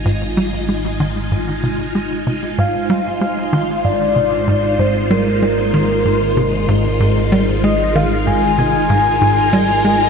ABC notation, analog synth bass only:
X:1
M:4/4
L:1/8
Q:1/4=95
K:Ab
V:1 name="Analog synth bass" clef=bass
A,, G, A, E, A,, C, A, C, | A,, G, A, E, A,, C, A,, A,, | G, A, E, A,, C, A,, A,, G, | A, E, A,, C, A,, A,, G, A, |]